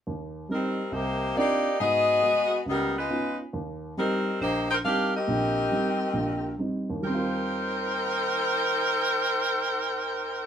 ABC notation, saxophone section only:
X:1
M:4/4
L:1/8
Q:"Swing" 1/4=137
K:Eb
V:1 name="Saxophone section"
z2 [G,CEB]2 [B,EGc]2 [B,EGd]2 | [_C_GAe]4 [=G,CEB] [A,EF_c]2 z | z2 [G,CEB]2 [B,EGc] [EBcg] [DGBf] [CGBe]- | [CGBe]6 z2 |
[EBcg]8- | [EBcg]8 |]